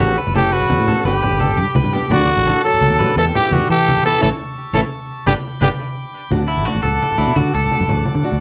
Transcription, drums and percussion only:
0.00 high conga loud
0.00 low conga medium
0.27 low conga medium
0.35 high conga medium
0.61 low conga medium
0.70 high conga medium
0.80 low conga soft
0.88 low conga medium
1.05 high conga medium
1.05 low conga soft
1.23 low conga medium
1.40 high conga medium
1.49 low conga medium
1.68 low conga soft
1.75 high conga loud
1.84 low conga medium
1.93 low conga soft
2.02 low conga soft
2.11 high conga loud
2.11 low conga loud
2.38 low conga medium
2.47 high conga medium
2.74 low conga medium
2.82 high conga medium
2.82 low conga soft
2.91 low conga soft
3.00 low conga loud
3.18 high conga medium
3.18 low conga soft
3.35 low conga medium
3.53 high conga loud
3.61 low conga medium
3.79 low conga soft
3.88 high conga loud
3.96 low conga medium
4.07 low conga soft
4.15 low conga soft
4.22 high conga loud
4.75 high conga medium
5.27 high conga medium
5.62 high conga loud
6.31 high conga medium
6.31 low conga medium
6.59 low conga medium
6.68 high conga medium
6.85 low conga medium
6.94 low conga soft
7.03 high conga medium
7.12 low conga medium
7.38 high conga medium
7.38 low conga medium
7.64 low conga medium
7.71 high conga medium
7.89 low conga medium
8.05 high conga medium
8.05 low conga soft
8.15 low conga medium

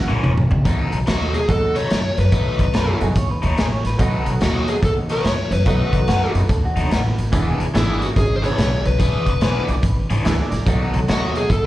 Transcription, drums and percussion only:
0.23 mid tom medium
0.37 mid tom loud
0.51 floor tom medium
0.65 kick loud
0.65 closed hi-hat medium
0.92 closed hi-hat medium
1.07 snare loud
1.07 closed hi-hat medium
1.34 closed hi-hat medium
1.48 kick loud
1.48 closed hi-hat medium
1.76 closed hi-hat medium
1.90 snare loud
1.90 closed hi-hat medium
2.17 snare soft
2.17 closed hi-hat medium
2.32 kick loud
2.32 closed hi-hat medium
2.59 kick medium
2.59 closed hi-hat medium
2.74 snare loud
2.74 closed hi-hat medium
3.01 closed hi-hat medium
3.15 kick loud
3.15 closed hi-hat medium
3.43 closed hi-hat medium
3.57 snare loud
3.57 closed hi-hat medium
3.85 snare soft
3.85 closed hi-hat medium
3.99 kick loud
3.99 closed hi-hat medium
4.26 closed hi-hat medium
4.41 snare loud
4.41 closed hi-hat medium
4.68 closed hi-hat medium
4.83 kick loud
4.83 closed hi-hat medium
5.09 closed hi-hat medium
5.25 snare medium
5.25 closed hi-hat medium
5.51 snare soft
5.51 closed hi-hat medium
5.66 kick loud
5.66 closed hi-hat medium
5.93 kick medium
5.93 closed hi-hat medium
6.08 snare medium
6.08 closed hi-hat medium
6.35 closed hi-hat medium
6.49 kick loud
6.49 closed hi-hat medium
6.77 closed hi-hat medium
6.91 snare loud
6.91 closed hi-hat medium
7.18 closed hi-hat medium
7.33 kick loud
7.33 closed hi-hat medium
7.60 closed hi-hat medium
7.75 snare loud
7.75 closed hi-hat medium
8.02 closed hi-hat medium
8.16 kick loud
8.16 closed hi-hat medium
8.44 closed hi-hat medium
8.58 snare loud
8.58 closed hi-hat medium
8.85 closed hi-hat medium
9.00 kick loud
9.00 closed hi-hat medium
9.26 kick medium
9.26 closed hi-hat medium
9.41 snare medium
9.41 closed hi-hat medium
9.68 closed hi-hat medium
9.83 kick loud
9.83 closed hi-hat medium
10.10 closed hi-hat medium
10.25 snare loud
10.25 closed hi-hat medium
10.52 snare soft
10.52 closed hi-hat medium
10.66 kick loud
10.66 closed hi-hat medium
10.94 closed hi-hat medium
11.08 snare loud
11.08 closed hi-hat medium
11.35 closed hi-hat medium
11.50 kick loud
11.50 closed hi-hat medium

